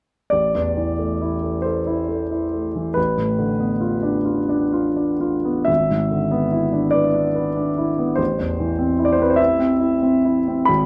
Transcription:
0.30 A1 D5
0.54 E2
0.77 E3
0.99 A3
1.21 E4
1.43 A3
1.62 A4 C5
1.87 E4
2.09 A4
2.31 E4
2.54 A3
2.76 E3
2.94 A1 B4
3.17 A2
3.39 D3
3.60 B3
3.81 F4
4.03 D4
4.25 F4
4.49 D4
4.73 F4
4.96 D4
5.21 F4
5.45 B3
5.65 G#1 E5
5.90 G#2
6.11 D3
6.31 B3
6.52 E4
6.73 D4
6.91 B4 D5
7.14 D4
7.35 B4
7.56 D4
7.78 E4
7.99 B3
8.16 A1 C5
8.39 E2
8.60 E3
8.79 C4
8.99 E4
9.05 D5
9.12 C5
9.19 C4 B4
9.30 C5
9.36 E4 E5
9.59 C4
9.80 E4
10.02 C4
10.25 E4
10.48 C4
10.65 G#1 B5

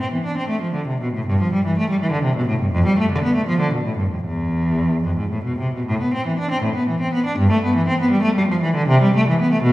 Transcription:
0.00 C4
0.12 E3
0.25 D4
0.38 C4
0.49 A3
0.61 F3
0.73 D3
0.87 C3
1.01 B2
1.14 A2
1.26 G2
1.41 F3
1.53 G3
1.65 E3
1.78 A3
1.90 G3
2.01 E3
2.12 D3
2.23 C3
2.36 B2
2.48 A2
2.60 G2
2.72 F2
2.86 G3
2.99 A3
3.12 D3
3.23 B3
3.36 A3
3.47 F3
3.60 D3
3.73 B2
3.84 A2
3.98 G2
4.10 F2
4.24 E2
5.04 F2
5.17 G#2
5.31 A2
5.44 B2
5.59 C3
5.74 B2
5.86 A2
6.01 B3
6.14 C4
6.26 E3
6.39 D4
6.51 C4
6.63 A2
6.75 B3
6.88 E3
7.01 C4
7.14 B3
7.26 D4
7.38 G2
7.51 A3
7.64 B3
7.76 E3
7.88 C4
8.00 B3
8.11 G3
8.23 A3
8.35 G3
8.48 F3
8.62 E3
8.75 D3
8.88 C3
9.02 G3
9.15 A3
9.28 E3
9.41 B3
9.52 A3
9.63 B2

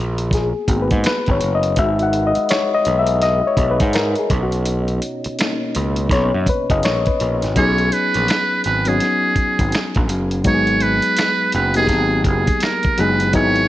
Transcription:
Already playing: A#3 B3 F#4
0.00 A#1
0.18 closed hi-hat
0.31 G#4, kick, closed hi-hat
0.35 snare
0.68 G#1 A#3 B3 F#4, kick, closed hi-hat
0.82 B4
0.91 G#2, kick, closed hi-hat
1.04 B4, finger snap, snare, closed hi-hat
1.26 G#1, kick, closed hi-hat
1.31 C#5
1.41 F#1, closed hi-hat
1.55 D#5
1.63 closed hi-hat
1.76 G#1 G#3 D#4 F#4 B4 E5, kick, closed hi-hat
1.99 F#5, closed hi-hat
2.13 closed hi-hat
2.27 D#5
2.35 muted picked electric bass stroke, closed hi-hat
2.49 C#5, finger snap, snare, closed hi-hat
2.75 D#5
2.85 B1, closed hi-hat
2.99 E5
3.07 closed hi-hat
3.22 D#5, snare, closed hi-hat
3.47 C#5
3.57 B1, kick, closed hi-hat
3.71 B4
3.80 G#2, kick, closed hi-hat
3.93 A#4, finger snap, snare, closed hi-hat
4.15 G#4, closed hi-hat
4.30 B1 B2 C#4, kick, closed hi-hat
4.43 F#4
4.52 closed hi-hat
4.66 closed hi-hat
4.88 closed hi-hat
5.02 closed hi-hat
5.24 muted picked electric bass stroke, closed hi-hat
5.39 A#3 C#4 D#4, finger snap, snare, closed hi-hat
5.75 C#2, closed hi-hat
5.96 closed hi-hat
6.09 B1 C#5, kick, closed hi-hat
6.14 snare
6.34 F#2
6.46 B4, kick, closed hi-hat
6.70 F#1 D#5, kick, closed hi-hat
6.83 A#1 C#5, finger snap, snare, closed hi-hat
7.06 B4, kick, closed hi-hat
7.20 A#1, closed hi-hat
7.42 G#1, snare, closed hi-hat
7.55 B1 F#3 B3 C#4 D#4 G#4 C#5, kick, closed hi-hat
7.78 closed hi-hat
7.92 B4, closed hi-hat
8.14 A#1, closed hi-hat
8.28 finger snap, snare, closed hi-hat
8.64 G#1 B4, closed hi-hat
8.85 F#3 B3 C#4 D#4 G#4, closed hi-hat
8.89 F#4
9.00 snare, closed hi-hat
9.36 muted picked electric bass stroke, kick, closed hi-hat
9.59 G#1, kick, closed hi-hat
9.72 finger snap, snare, closed hi-hat
9.95 A#1, kick, closed hi-hat
10.09 F#1, closed hi-hat
10.31 closed hi-hat
10.44 G#1 F#3 G#3 B3 D#4 F#4 C#5, kick, closed hi-hat
10.54 G#4
10.67 closed hi-hat
10.80 B4, closed hi-hat
11.02 closed hi-hat
11.17 finger snap, snare, closed hi-hat
11.52 F#1 B4, closed hi-hat
11.74 F#3 A#3 B3 D#4 G4 G#4, closed hi-hat
11.85 G#1 G#4, kick, closed hi-hat
11.91 snare
12.24 F#1 G#4, kick, closed hi-hat
12.47 kick, closed hi-hat
12.60 A#4, finger snap, snare, closed hi-hat
12.83 kick, closed hi-hat
12.98 F#1 F#3 G#3 B3 D#4 G#4 B4, closed hi-hat
13.20 closed hi-hat
13.33 G#1 F#3 B3 D#4 E4 G#4 C#5, kick, closed hi-hat
13.56 closed hi-hat

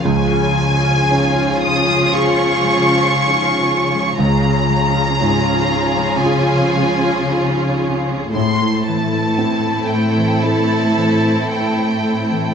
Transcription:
Already playing: F3 C#4 F4
0.04 C#2 C#3 F3 C#4 F4 G#4 G#5
0.32 F4
0.58 G#3
0.84 F4
1.09 C#4 D#4
1.36 F4
1.62 C#4 D#6
1.89 G#3
2.13 C#4 F4 G#4 C#6
2.39 F4
2.64 G#3
2.90 F4
3.17 D#4
3.41 F4
3.67 C#4
3.95 G#3
4.18 C#2 C#3 F3 C#4 F4 G#4 A#5
4.44 F4
4.70 G#3
4.94 F4
5.21 G#2 D#4
5.46 F4
5.71 C#4
5.98 G#3
6.24 C#4 F4 G#4 G#5
6.50 F4
6.76 G#3
7.03 F4
7.30 D#4
7.56 F4
7.83 C#4
8.09 G#3
8.34 A2 A3 C4 E4 A4 C6
8.62 E4
8.87 E3 A5
9.12 E4
9.38 C4 D4
9.64 E4
9.90 C4 G5
10.17 E3
10.43 C4 E4 A4 A5
10.70 E4
10.97 E3
11.23 E4
11.49 D4 G5
11.76 E4
12.04 C4
12.31 E3

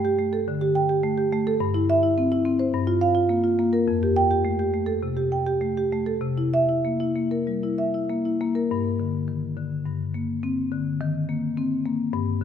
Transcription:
Already playing: G2 A3
0.05 G4
0.19 A3
0.33 A4
0.48 D3
0.61 G4
0.75 G5
0.89 G4
1.03 A3
1.18 G4
1.33 A3
1.47 A4
1.60 G2
1.74 E4
1.90 E5
2.03 E4
2.18 C4
2.32 E4
2.45 C4
2.59 C5
2.74 G2
2.87 F4
3.01 F5
3.15 F4
3.29 A#3
3.44 F4
3.59 A#3
3.73 A#4
3.88 F2
4.03 G4
4.16 G5
4.31 G4
4.45 A3
4.59 G4
4.74 A3
4.86 A4
5.03 C3
5.17 G4
5.32 G5
5.46 G4
5.61 A3
5.77 G4
5.92 A3
6.06 A4
6.21 C3
6.38 E4
6.54 E5
6.69 E4
6.85 A#3
7.00 E4
7.15 A#3
7.31 A#4
7.47 G3
7.63 E4
7.78 E5
7.94 E4
8.09 A#3
8.25 E4
8.41 A#3
8.55 A#4
8.71 G2
9.00 D3
9.28 D#3
9.57 D3
9.86 G2
10.14 A#3
10.43 C4
10.72 D3
11.01 D#3
11.29 A#3
11.57 C4
11.86 A#3
12.13 G2

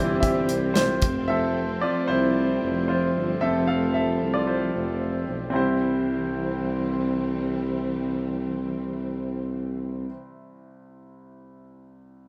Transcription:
Already playing: G1 C3 E3 G3 C4 E4 F4 G4 C5 D5 E5
0.20 G4 E5, kick, closed hi-hat
0.49 C2, closed hi-hat
0.74 F4 C5, snare, closed hi-hat
1.02 F1 F3 A3, kick, closed hi-hat
1.28 F3 A3 C4 A4 E5
1.81 F4 D5
2.08 C2 E4 C5
2.62 F1
2.88 F4 C5
3.15 G1
3.41 F1 F3 A3 C4 A4 E5
3.67 A4 F5
3.94 A4 E5
4.22 C2
4.34 F4 D5
4.47 F4 C5
4.75 F1
5.28 B1
5.50 C2 E3 G3 C4 E4 G4
5.55 C2 C5

